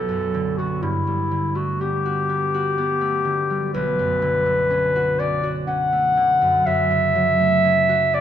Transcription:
0.00 0.87 B1 soft
0.00 0.58 B3 soft
0.00 0.59 A4 medium
0.09 0.86 F#2 soft
0.34 0.86 D3 soft
0.58 1.80 B3 soft
0.58 0.84 F#4 medium
0.82 3.77 G2 soft
0.82 1.57 E4 medium
1.07 3.49 G3 soft
1.31 3.23 D3 soft
1.55 3.00 A3 soft
1.55 1.83 F#4 medium
1.81 2.28 B3 soft
1.81 3.73 G4 medium
2.06 2.53 F#4 soft
2.29 2.77 B3 soft
2.54 4.95 F#4 soft
2.78 6.68 B3 soft
3.01 4.45 A3 soft
3.25 3.77 D3 soft
3.50 3.78 G3 soft
3.73 6.70 B1 medium
3.73 5.21 B4 medium
3.99 6.40 F#2 soft
4.22 6.16 D3 soft
4.46 5.91 A3 soft
4.70 5.18 C#4 soft
4.96 5.42 F#4 soft
5.19 5.66 C#4 soft
5.19 5.51 D5 medium
5.43 7.88 F#4 medium
5.67 7.63 C#4 soft
5.67 6.68 F#5 medium
5.92 7.39 A3 soft
6.17 6.70 D3 soft
6.42 6.65 F#2 soft
6.66 8.21 F#2 soft
6.66 8.16 E5 medium
6.91 8.21 C#3 soft
7.15 8.21 F#3 soft
7.40 8.21 A3 soft
7.65 8.12 C#4 soft
7.89 8.21 F#4 soft
8.13 8.21 C#4 soft
8.13 8.21 D5 medium

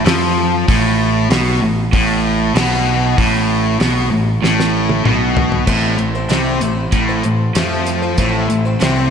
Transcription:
0.04 0.64 F2 medium
0.04 0.66 F3 loud
0.04 snare loud
0.04 open hi-hat medium
0.67 1.27 A1 medium
0.67 1.29 A2 loud
0.67 kick loud
0.67 open hi-hat medium
1.30 1.59 B1 loud
1.30 1.60 B2 loud
1.30 snare loud
1.30 open hi-hat medium
1.62 1.91 A1 medium
1.62 1.86 A2 medium
1.93 2.51 A1 loud
1.93 2.57 A2 loud
1.93 kick loud
1.93 open hi-hat medium
2.56 3.14 B1 medium
2.56 3.17 B2 loud
2.56 snare loud
2.56 open hi-hat medium
3.18 3.76 A1 loud
3.18 3.79 A2 loud
3.18 kick loud
3.18 open hi-hat medium
3.80 4.10 B1 loud
3.80 4.10 B2 medium
3.80 snare loud
3.80 open hi-hat medium
4.10 4.41 A1 medium
4.10 4.35 A2 medium
4.42 5.01 A1 medium
4.42 5.04 A2 loud
4.42 snare medium
4.60 snare medium
4.89 high tom medium
5.05 5.63 B1 medium
5.05 5.67 B2 loud
5.05 mid tom medium
5.37 floor tom medium
5.52 floor tom medium
5.67 5.97 A1 medium
5.67 6.14 A2 medium
5.67 5.98 A2 medium
5.67 6.15 E3 medium
5.67 6.15 A3 medium
5.67 6.15 C4 medium
5.67 6.14 E4 medium
5.67 6.14 C5 medium
5.67 kick loud
5.67 crash medium
5.99 6.28 A1 medium
5.99 6.24 A2 medium
5.99 closed hi-hat medium
6.15 6.28 A3 soft
6.15 6.29 C4 soft
6.15 6.28 E4 medium
6.15 6.29 C5 soft
6.29 6.59 C2 medium
6.29 6.61 A2 medium
6.29 6.60 C3 medium
6.29 6.61 E3 medium
6.29 6.60 A3 medium
6.29 6.61 C4 medium
6.29 6.61 E4 medium
6.29 6.61 C5 medium
6.29 snare medium
6.29 closed hi-hat medium
6.61 6.91 A1 medium
6.61 6.87 A2 medium
6.61 7.08 A3 medium
6.61 7.08 C4 medium
6.61 7.08 E4 medium
6.61 7.08 C5 medium
6.61 closed hi-hat medium
6.92 7.22 A1 medium
6.92 7.23 A2 loud
6.92 kick loud
6.92 closed hi-hat medium
7.09 7.55 A3 soft
7.09 7.55 C4 soft
7.09 7.55 E4 soft
7.09 7.55 C5 soft
7.24 7.53 A1 medium
7.24 7.50 A2 medium
7.24 closed hi-hat soft
7.55 8.14 F2 medium
7.55 7.86 A2 medium
7.55 8.17 F3 medium
7.55 7.84 A3 medium
7.55 7.85 C4 medium
7.55 7.85 E4 medium
7.55 7.86 C5 medium
7.55 snare loud
7.55 closed hi-hat loud
7.85 8.02 A3 medium
7.85 8.02 C4 medium
7.85 8.01 E4 medium
7.85 8.01 C5 medium
7.85 closed hi-hat medium
8.02 8.17 A3 soft
8.02 8.18 C4 soft
8.02 8.18 E4 soft
8.02 8.18 C5 medium
8.17 8.47 A1 medium
8.17 8.65 A2 medium
8.17 8.48 A2 medium
8.17 8.65 E3 medium
8.17 8.65 A3 medium
8.17 8.65 C4 medium
8.17 8.65 E4 medium
8.17 8.64 C5 medium
8.17 kick loud
8.17 closed hi-hat medium
8.50 8.79 A1 medium
8.50 8.74 A2 medium
8.50 closed hi-hat medium
8.65 8.80 A3 soft
8.65 8.80 C4 soft
8.65 8.80 E4 soft
8.65 8.81 C5 soft
8.80 9.10 C2 medium
8.80 9.10 A2 medium
8.80 9.10 C3 medium
8.80 9.10 E3 medium
8.80 9.10 A3 medium
8.80 9.10 C4 medium
8.80 9.10 E4 medium
8.80 9.10 C5 medium
8.80 snare loud
8.80 closed hi-hat medium

